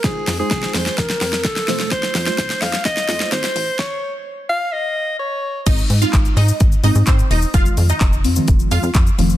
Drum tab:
CC |----------------|----------------|----------------|x---------------|
HH |x-o-x-o-x-o-x-o-|x-o-x-o-x-o-x-o-|----------------|x-o-x-o-x-o-x-o-|
SH |----------------|----------------|----------------|xxxxxxxxxxxxxxxx|
CP |----------------|----------------|----------------|----x-------x---|
SD |o-o-oooooooooooo|oooooooooooooo--|o---------------|----------------|
BD |o---o---o---o---|o---o---o-------|o---------------|o---o---o---o---|

CC |----------------|
HH |x-o-x-o-x-o-x-o-|
SH |xxxxxxxxxxxxxxxx|
CP |----x-------x---|
SD |----------------|
BD |o---o---o---o---|